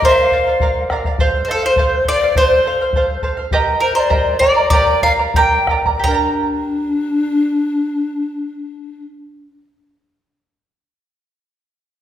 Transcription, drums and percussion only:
0.02 bombo low medium
0.31 bombo low soft
0.60 bombo low medium
0.90 bombo rim medium
0.90 bombo low soft
1.04 bombo low medium
1.18 bombo low medium
1.76 bombo low medium
2.05 bombo low medium
2.35 bombo low medium
2.93 bombo low medium
3.22 bombo low medium
3.51 bombo low medium
4.10 bombo low medium
4.40 bombo low medium
4.70 bombo low medium
5.02 bombo low medium
5.34 bombo low medium
5.67 bombo rim medium
5.67 bombo low medium
5.85 bombo low medium
6.04 bombo low medium

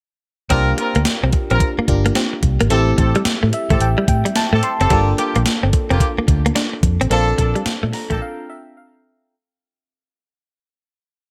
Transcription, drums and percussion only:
0.50 kick loud
0.50 closed hi-hat medium
0.78 closed hi-hat medium
0.95 closed hi-hat soft
1.05 snare loud
1.05 closed hi-hat medium
1.33 kick loud
1.33 closed hi-hat medium
1.50 closed hi-hat soft
1.60 kick medium
1.60 closed hi-hat medium
1.88 kick loud
1.88 closed hi-hat medium
2.06 closed hi-hat medium
2.15 snare loud
2.15 closed hi-hat medium
2.43 kick medium
2.43 closed hi-hat medium
2.60 closed hi-hat medium
2.70 closed hi-hat medium
2.98 kick medium
2.98 closed hi-hat medium
3.15 closed hi-hat soft
3.25 snare loud
3.25 closed hi-hat medium
3.53 closed hi-hat medium
3.70 kick loud
3.70 closed hi-hat soft
3.81 closed hi-hat medium
4.08 kick loud
4.08 closed hi-hat medium
4.26 closed hi-hat medium
4.36 snare loud
4.36 closed hi-hat medium
4.63 closed hi-hat medium
4.81 closed hi-hat medium
4.90 kick loud
4.90 closed hi-hat medium
5.18 closed hi-hat medium
5.35 closed hi-hat soft
5.46 snare loud
5.46 closed hi-hat medium
5.73 kick loud
5.73 closed hi-hat medium
5.91 closed hi-hat soft
6.00 kick medium
6.00 closed hi-hat medium
6.28 kick medium
6.28 closed hi-hat medium
6.46 closed hi-hat medium
6.56 snare loud
6.56 closed hi-hat medium
6.83 kick medium
6.83 closed hi-hat medium
7.01 closed hi-hat medium
7.11 closed hi-hat medium
7.38 kick medium
7.38 closed hi-hat medium
7.56 closed hi-hat soft
7.66 snare loud
7.66 closed hi-hat medium
7.93 snare medium
7.93 open hi-hat medium
8.11 kick loud
8.11 closed hi-hat soft

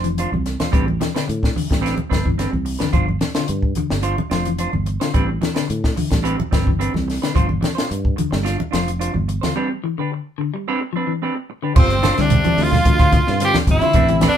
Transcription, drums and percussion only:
0.04 closed hi-hat soft
0.18 closed hi-hat medium
0.34 high conga medium
0.46 snare soft
0.46 closed hi-hat soft
0.60 snare medium
0.60 closed hi-hat soft
0.60 high conga medium
0.73 kick medium
0.73 closed hi-hat medium
0.88 high conga medium
1.01 snare medium
1.01 closed hi-hat soft
1.01 high conga medium
1.16 snare medium
1.16 closed hi-hat soft
1.29 closed hi-hat medium
1.43 kick medium
1.43 snare medium
1.56 open hi-hat medium
1.56 high conga medium
1.71 kick medium
1.71 snare medium
1.71 closed hi-hat soft
1.86 snare soft
1.86 closed hi-hat medium
1.98 high conga medium
2.11 kick medium
2.11 snare medium
2.11 closed hi-hat soft
2.25 kick medium
2.39 snare soft
2.39 closed hi-hat medium
2.53 high conga medium
2.66 open hi-hat medium
2.80 snare medium
2.80 closed hi-hat soft
2.80 high conga medium
2.93 kick medium
2.93 closed hi-hat soft
3.09 high conga medium
3.21 snare medium
3.21 closed hi-hat soft
3.21 high conga medium
3.35 snare medium
3.35 closed hi-hat soft
3.48 closed hi-hat medium
3.62 kick medium
3.75 closed hi-hat medium
3.75 high conga medium
3.90 snare medium
4.03 closed hi-hat medium
4.18 high conga medium
4.31 snare medium
4.31 closed hi-hat soft
4.45 closed hi-hat soft
4.58 closed hi-hat medium
4.73 high conga medium
4.86 closed hi-hat soft
5.01 snare medium
5.01 closed hi-hat soft
5.14 kick medium
5.14 closed hi-hat medium
5.42 snare medium
5.42 closed hi-hat soft
5.42 high conga medium
5.56 snare medium
5.56 closed hi-hat soft
5.70 closed hi-hat medium
5.84 kick medium
5.84 snare medium
5.97 open hi-hat medium
5.97 high conga medium
6.11 kick medium
6.11 snare medium
6.11 closed hi-hat soft
6.25 closed hi-hat medium
6.40 high conga medium
6.52 kick medium
6.52 snare medium
6.52 closed hi-hat soft
6.67 kick medium
6.81 closed hi-hat medium
6.94 snare soft
6.94 high conga medium
7.10 snare soft
7.10 open hi-hat medium
7.23 snare medium
7.23 closed hi-hat soft
7.36 kick medium
7.36 closed hi-hat medium
7.49 high conga medium
7.63 snare medium
7.63 closed hi-hat soft
7.63 high conga medium
7.78 snare medium
7.78 closed hi-hat soft
7.91 closed hi-hat medium
8.05 kick medium
8.18 closed hi-hat medium
8.18 high conga medium
8.32 snare medium
8.46 snare soft
8.46 closed hi-hat medium
8.60 high conga medium
8.73 snare medium
8.73 closed hi-hat soft
8.88 closed hi-hat soft
9.01 closed hi-hat medium
9.14 high conga medium
9.29 closed hi-hat medium
9.43 snare medium
9.43 closed hi-hat soft
9.43 high conga medium
11.76 kick medium
11.76 crash medium
11.76 low conga medium
11.90 closed hi-hat soft
12.03 snare medium
12.03 closed hi-hat medium
12.03 high conga medium
12.17 snare soft
12.17 closed hi-hat soft
12.30 closed hi-hat medium
12.30 low conga medium
12.44 closed hi-hat soft
12.44 high conga medium
12.58 open hi-hat medium
12.72 snare soft
12.72 low conga medium
12.85 kick medium
12.85 closed hi-hat medium
12.85 high conga medium
12.99 kick medium
12.99 snare soft
12.99 closed hi-hat soft
13.12 kick medium
13.12 closed hi-hat medium
13.12 high conga loud
13.27 snare soft
13.40 closed hi-hat medium
13.54 snare medium
13.54 closed hi-hat soft
13.54 high conga medium
13.67 kick medium
13.67 closed hi-hat medium
13.67 high conga medium
13.81 closed hi-hat soft
13.93 kick medium
13.93 closed hi-hat medium
13.93 low conga medium
14.08 closed hi-hat soft
14.21 snare medium
14.21 closed hi-hat medium
14.21 high conga loud

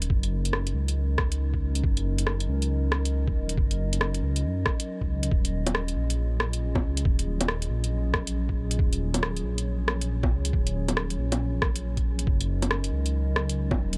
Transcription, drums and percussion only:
0.02 closed hi-hat medium
0.10 kick loud
0.23 closed hi-hat soft
0.45 closed hi-hat soft
0.53 cross-stick medium
0.67 closed hi-hat soft
0.88 closed hi-hat soft
1.18 kick loud
1.18 cross-stick medium
1.32 closed hi-hat soft
1.54 kick medium
1.75 closed hi-hat soft
1.84 kick loud
1.97 closed hi-hat soft
2.18 closed hi-hat medium
2.27 cross-stick medium
2.40 closed hi-hat soft
2.62 closed hi-hat medium
2.92 cross-stick loud
3.05 closed hi-hat medium
3.28 kick loud
3.49 closed hi-hat medium
3.58 kick loud
3.71 closed hi-hat soft
3.93 closed hi-hat medium
4.01 cross-stick loud
4.14 closed hi-hat soft
4.36 closed hi-hat medium
4.66 kick medium
4.66 cross-stick loud
4.80 closed hi-hat medium
5.01 kick medium
5.23 closed hi-hat medium
5.31 kick loud
5.45 closed hi-hat soft
5.67 closed hi-hat medium
5.67 low bongo medium
5.75 cross-stick loud
5.88 closed hi-hat soft
6.10 closed hi-hat medium
6.40 cross-stick loud
6.53 closed hi-hat medium
6.75 kick loud
6.75 low bongo medium
6.97 closed hi-hat medium
7.05 kick loud
7.19 closed hi-hat soft
7.41 closed hi-hat medium
7.41 low bongo medium
7.48 cross-stick loud
7.62 closed hi-hat soft
7.84 closed hi-hat medium
8.14 kick loud
8.14 cross-stick loud
8.27 closed hi-hat medium
8.49 kick medium
8.71 closed hi-hat medium
8.79 kick loud
8.93 closed hi-hat soft
9.14 closed hi-hat medium
9.14 low bongo soft
9.23 cross-stick loud
9.37 closed hi-hat soft
9.58 closed hi-hat medium
9.88 cross-stick loud
10.01 closed hi-hat medium
10.23 kick loud
10.23 low bongo soft
10.45 closed hi-hat medium
10.53 kick loud
10.67 closed hi-hat soft
10.88 closed hi-hat medium
10.88 low bongo soft
10.97 cross-stick loud
11.10 closed hi-hat soft
11.32 closed hi-hat medium
11.32 low bongo medium
11.62 kick loud
11.62 cross-stick loud
11.76 closed hi-hat medium
11.97 kick medium
11.97 closed hi-hat soft
12.19 closed hi-hat medium
12.27 kick loud
12.41 closed hi-hat soft
12.62 closed hi-hat soft
12.62 low bongo soft
12.71 cross-stick loud
12.84 closed hi-hat soft
13.06 closed hi-hat medium
13.36 cross-stick loud
13.49 closed hi-hat medium
13.71 kick loud
13.71 low bongo soft
13.93 closed hi-hat soft

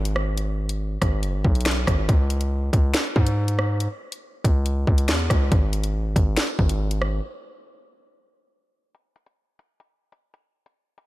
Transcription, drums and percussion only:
0.05 closed hi-hat medium
0.16 cross-stick loud
0.38 closed hi-hat medium
0.69 closed hi-hat medium
1.02 kick loud
1.02 cross-stick loud
1.02 closed hi-hat loud
1.23 closed hi-hat medium
1.45 kick medium
1.55 closed hi-hat soft
1.61 closed hi-hat medium
1.65 finger snap medium
1.65 snare loud
1.65 closed hi-hat medium
1.71 closed hi-hat medium
1.87 kick medium
1.87 cross-stick loud
1.87 closed hi-hat medium
2.09 kick loud
2.09 closed hi-hat medium
2.30 closed hi-hat loud
2.41 closed hi-hat medium
2.73 kick loud
2.73 closed hi-hat medium
2.94 finger snap medium
2.94 snare loud
2.94 closed hi-hat medium
3.16 kick medium
3.27 closed hi-hat medium
3.48 closed hi-hat medium
3.59 cross-stick loud
3.80 closed hi-hat medium
4.12 closed hi-hat medium
4.45 kick loud
4.45 closed hi-hat loud
4.66 closed hi-hat medium
4.87 kick medium
4.98 closed hi-hat medium
5.08 finger snap medium
5.08 snare loud
5.08 closed hi-hat medium
5.30 kick medium
5.30 cross-stick loud
5.30 closed hi-hat medium
5.52 kick loud
5.52 closed hi-hat medium
5.73 closed hi-hat loud
5.84 closed hi-hat medium
6.16 kick loud
6.16 closed hi-hat medium
6.37 finger snap medium
6.37 snare loud
6.37 closed hi-hat medium
6.59 kick medium
6.69 closed hi-hat medium
6.91 closed hi-hat medium
7.02 cross-stick loud
8.95 closed hi-hat medium
9.16 closed hi-hat medium
9.26 closed hi-hat medium
9.59 closed hi-hat medium
9.80 closed hi-hat medium
10.12 closed hi-hat medium
10.34 closed hi-hat medium
10.66 closed hi-hat medium
10.98 closed hi-hat medium

